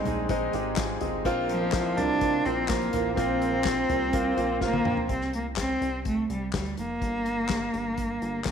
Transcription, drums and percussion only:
0.05 closed hi-hat medium
0.05 floor tom medium
0.29 kick loud
0.29 closed hi-hat medium
0.53 closed hi-hat medium
0.76 kick loud
0.76 snare loud
0.76 clap medium
0.76 closed hi-hat medium
1.01 closed hi-hat medium
1.01 floor tom medium
1.25 kick loud
1.25 closed hi-hat medium
1.49 closed hi-hat medium
1.72 kick loud
1.72 snare loud
1.72 clap loud
1.72 closed hi-hat medium
1.97 closed hi-hat medium
1.97 floor tom medium
2.21 kick loud
2.21 closed hi-hat medium
2.45 closed hi-hat medium
2.68 kick loud
2.68 snare loud
2.68 clap medium
2.68 closed hi-hat medium
2.82 closed hi-hat soft
2.93 closed hi-hat medium
2.93 floor tom medium
3.17 kick loud
3.17 closed hi-hat medium
3.42 closed hi-hat medium
3.64 kick loud
3.64 snare loud
3.64 clap medium
3.64 closed hi-hat medium
3.89 closed hi-hat medium
3.89 floor tom medium
4.13 kick loud
4.13 closed hi-hat medium
4.38 closed hi-hat medium
4.61 kick loud
4.61 snare medium
4.73 high tom medium
4.85 mid tom medium
4.97 floor tom medium
5.09 kick medium
5.09 closed hi-hat medium
5.21 snare soft
5.33 closed hi-hat medium
5.56 kick medium
5.56 snare loud
5.56 clap medium
5.56 closed hi-hat medium
5.82 closed hi-hat medium
6.05 kick medium
6.05 closed hi-hat medium
6.30 closed hi-hat medium
6.53 kick medium
6.53 snare medium
6.53 clap medium
6.53 closed hi-hat medium
6.66 closed hi-hat soft
6.77 closed hi-hat medium
7.02 kick medium
7.02 closed hi-hat medium
7.26 closed hi-hat medium
7.49 kick loud
7.49 snare loud
7.49 clap medium
7.49 closed hi-hat medium
7.74 closed hi-hat medium
7.97 kick medium
7.97 closed hi-hat medium
8.22 closed hi-hat soft
8.45 kick medium
8.45 snare medium
8.45 clap medium
8.45 closed hi-hat medium

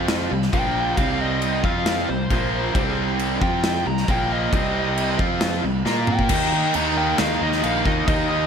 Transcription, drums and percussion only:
0.08 snare loud
0.08 crash medium
0.42 snare soft
0.53 kick loud
0.53 crash medium
0.97 kick loud
0.97 crash medium
1.42 crash medium
1.64 kick loud
1.86 snare loud
1.86 crash medium
2.30 kick loud
2.30 crash medium
2.75 kick loud
2.75 crash medium
3.19 crash medium
3.42 kick loud
3.63 snare loud
3.63 crash medium
3.97 snare soft
4.08 kick loud
4.08 crash medium
4.53 kick loud
4.53 crash medium
4.97 crash medium
5.19 kick loud
5.41 snare loud
5.41 crash medium
5.86 snare medium
6.07 mid tom medium
6.19 kick medium
6.29 kick loud
6.29 crash loud
6.29 crash medium
6.74 crash medium
7.18 snare loud
7.18 crash medium
7.52 snare soft
7.63 crash medium
7.85 kick medium
8.08 kick loud
8.08 crash medium

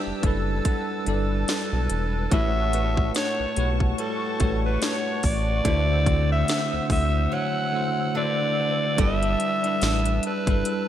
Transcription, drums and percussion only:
0.23 kick medium
0.23 closed hi-hat medium
0.65 kick medium
0.65 closed hi-hat medium
1.06 closed hi-hat medium
1.48 snare loud
1.48 closed hi-hat medium
1.90 closed hi-hat medium
2.31 kick loud
2.31 closed hi-hat medium
2.73 closed hi-hat medium
2.97 kick medium
3.15 snare loud
3.15 closed hi-hat medium
3.56 closed hi-hat medium
3.80 kick medium
3.98 closed hi-hat medium
4.40 kick medium
4.40 closed hi-hat medium
4.82 snare loud
4.82 closed hi-hat medium
5.23 kick medium
5.23 open hi-hat medium
5.65 kick loud
5.65 closed hi-hat medium
6.06 kick loud
6.06 closed hi-hat medium
6.48 snare loud
6.48 closed hi-hat medium
6.90 kick loud
6.90 open hi-hat medium
8.98 kick loud
8.98 closed hi-hat medium
9.23 closed hi-hat soft
9.40 closed hi-hat medium
9.64 closed hi-hat soft
9.82 snare loud
9.82 closed hi-hat medium
10.05 closed hi-hat medium
10.23 closed hi-hat medium
10.47 kick medium
10.47 closed hi-hat soft
10.65 closed hi-hat medium

